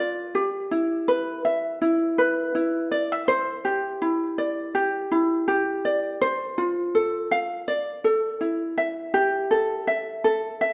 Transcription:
0.00 0.43 F4 soft
0.00 1.08 B4 soft
0.00 0.43 D5 medium
0.35 3.65 G4 medium
0.71 1.81 E4 medium
1.08 1.44 B4 medium
1.45 2.91 E5 medium
1.82 2.54 E4 medium
2.18 3.36 B4 medium
2.55 4.02 E4 soft
2.92 3.12 D5 medium
3.12 3.28 E5 soft
3.28 6.20 C5 medium
3.65 4.74 G4 medium
4.02 5.10 E4 medium
4.38 5.84 D5 medium
4.75 5.47 G4 medium
5.12 6.29 E4 soft
5.48 6.29 G4 medium
5.85 6.30 D5 medium
6.21 7.67 C5 medium
6.58 7.76 F4 soft
6.95 8.04 A4 soft
7.31 7.76 F5 medium
7.68 9.23 D5 medium
8.04 9.51 A4 soft
8.41 10.73 E4 medium
8.78 9.13 E5 medium
9.14 9.87 G4 medium
9.51 10.23 A4 soft
9.87 10.60 E5 medium
10.24 10.73 A4 medium
10.61 10.73 E5 medium

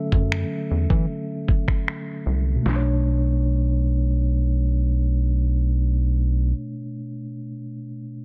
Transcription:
0.00 2.67 D3 medium
0.00 2.67 F#3 soft
0.00 2.63 A3 medium
0.00 2.67 C#4 medium
0.00 1.84 A4 medium
0.00 1.83 E5 medium
0.12 0.44 F#2 medium
0.12 kick medium
0.32 finger snap loud
0.71 0.86 E2 medium
0.90 1.06 E3 medium
0.90 kick medium
1.48 kick medium
1.68 finger snap medium
1.68 kick medium
1.88 finger snap loud
2.26 2.58 C2 medium
2.56 6.43 B2 medium
2.63 6.53 B1 medium
2.63 6.50 A3 medium
2.63 snare medium
2.69 6.57 D4 medium
2.76 6.64 C#5 medium

